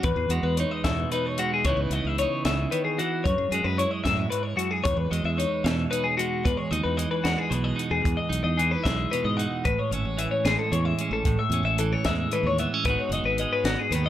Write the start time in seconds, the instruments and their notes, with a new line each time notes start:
0.03 fingered electric bass E2, clean electric guitar E2 B4, kick, closed hi-hat
0.16 fingered electric bass E2
0.29 fingered electric bass E2, clean electric guitar G#3 F#4, closed hi-hat
0.43 fingered electric bass E2, clean electric guitar B4
0.57 clean electric guitar D#4 C#5, closed hi-hat
0.71 clean electric guitar D#5
0.84 fingered electric bass E2, clean electric guitar B2 E5, kick, snare, closed hi-hat
1.12 clean electric guitar D#4 B4, closed hi-hat
1.26 clean electric guitar C#5
1.38 clean electric guitar G#3 F#4, closed hi-hat
1.54 clean electric guitar G#4
1.65 fingered electric bass C#2, clean electric guitar C#3 E3 B3 C#5, kick, closed hi-hat
1.69 clean electric guitar D#4 E4
1.77 fingered electric bass C#2
1.81 clean electric guitar B4
1.90 fingered electric bass C#2, clean electric guitar D#5, closed hi-hat
1.95 clean electric guitar B3
2.05 fingered electric bass C#2, clean electric guitar E5
2.18 clean electric guitar D#4 C#5, closed hi-hat
2.45 fingered electric bass C#2, clean electric guitar C#3 E5, snare, closed hi-hat
2.71 clean electric guitar D#3 B4, closed hi-hat
2.85 clean electric guitar G#4
2.98 clean electric guitar E3 F#4, closed hi-hat
3.24 fingered electric bass F#2, clean electric guitar C#5, kick, closed hi-hat
3.29 clean electric guitar F#2
3.38 fingered electric bass F#2
3.51 fingered electric bass F#2, clean electric guitar G#3 G#4, closed hi-hat
3.64 fingered electric bass F#2, clean electric guitar B4
3.78 clean electric guitar E4 C#5, closed hi-hat
3.91 clean electric guitar D#5
4.04 fingered electric bass F#2, clean electric guitar A2 E5, kick, snare, closed hi-hat
4.30 clean electric guitar G#2 B4, closed hi-hat
4.43 clean electric guitar C#5
4.56 clean electric guitar F#2 F#4, closed hi-hat
4.71 clean electric guitar G#4
4.84 clean electric guitar E2 C#5, fingered electric bass E2, kick, closed hi-hat
4.97 fingered electric bass E2, clean electric guitar B4
5.11 fingered electric bass E2, clean electric guitar G#3 D#5, closed hi-hat
5.24 fingered electric bass E2, clean electric guitar E5
5.38 clean electric guitar D#4 C#5, closed hi-hat
5.64 fingered electric bass E2, clean electric guitar B2 E5, snare, closed hi-hat
5.91 clean electric guitar D#4 B4, closed hi-hat
6.04 clean electric guitar G#4
6.17 clean electric guitar G#3 F#4, closed hi-hat
6.45 clean electric guitar E2 B4, fingered electric bass E2, kick, closed hi-hat
6.57 clean electric guitar C#5
6.71 fingered electric bass D#2, clean electric guitar D#4 D#5, closed hi-hat
6.84 fingered electric bass E2, clean electric guitar B4
6.97 clean electric guitar E3 D#5, closed hi-hat
7.11 clean electric guitar B4
7.24 fingered electric bass E2, clean electric guitar G#3 F#4, snare, closed hi-hat
7.38 clean electric guitar G#4
7.50 fingered electric bass B1, clean electric guitar B2 B4, closed hi-hat
7.64 clean electric guitar D#5
7.76 clean electric guitar D#4, closed hi-hat
7.91 fingered electric bass E2, clean electric guitar G#4
8.02 clean electric guitar E2, fingered electric bass E2, kick, closed hi-hat
8.17 clean electric guitar D#5
8.29 fingered electric bass B1, clean electric guitar D#4, closed hi-hat
8.44 fingered electric bass E2, clean electric guitar D#5
8.58 clean electric guitar E3 G#4, closed hi-hat
8.71 clean electric guitar B4
8.84 fingered electric bass B1, clean electric guitar G#3 E5, kick, snare, closed hi-hat
9.11 clean electric guitar B2 B4, closed hi-hat
9.24 fingered electric bass G#2, clean electric guitar D#5
9.37 clean electric guitar D#4 F#5, closed hi-hat
9.65 fingered electric bass A1, clean electric guitar A2 B4, kick, closed hi-hat
9.79 clean electric guitar C#5
9.91 fingered electric bass G#1, clean electric guitar C#4 E5, closed hi-hat
10.05 fingered electric bass A1, clean electric guitar C#5
10.17 clean electric guitar E3 E5, closed hi-hat
10.31 clean electric guitar C#5
10.45 fingered electric bass A1, clean electric guitar G#3 G#4, snare, closed hi-hat
10.59 clean electric guitar A4
10.72 fingered electric bass E2, clean electric guitar E3 C#5, closed hi-hat
10.85 clean electric guitar E5
10.99 clean electric guitar C#4, closed hi-hat
11.11 fingered electric bass A1, clean electric guitar A4
11.25 fingered electric bass A1, clean electric guitar A2, kick, closed hi-hat
11.39 clean electric guitar E5
11.50 fingered electric bass E2, clean electric guitar C#4, closed hi-hat
11.63 fingered electric bass A1, clean electric guitar E5
11.78 clean electric guitar E3 A4, closed hi-hat
11.93 clean electric guitar C#5
12.05 fingered electric bass E2, clean electric guitar G#3 E5, kick, snare, closed hi-hat
12.32 clean electric guitar E3 B4, closed hi-hat
12.43 fingered electric bass D#2, clean electric guitar C#5
12.58 clean electric guitar B3 E5, closed hi-hat
12.74 clean electric guitar C#4
12.85 fingered electric bass G#1, clean electric guitar G#2 G#3 B3 D#4 B4, kick, closed hi-hat
12.90 clean electric guitar F#4
12.99 clean electric guitar C#5
13.09 fingered electric bass F#1, clean electric guitar D#5, closed hi-hat
13.14 clean electric guitar D#4
13.24 fingered electric bass G#1, clean electric guitar B4
13.38 clean electric guitar G#3 D#5, closed hi-hat
13.53 clean electric guitar B4
13.64 fingered electric bass G#1, clean electric guitar F#4, snare, closed hi-hat
13.70 clean electric guitar B3
13.79 clean electric guitar G#4
13.91 fingered electric bass D#2, clean electric guitar B4, closed hi-hat
13.95 clean electric guitar D#3
14.06 clean electric guitar D#5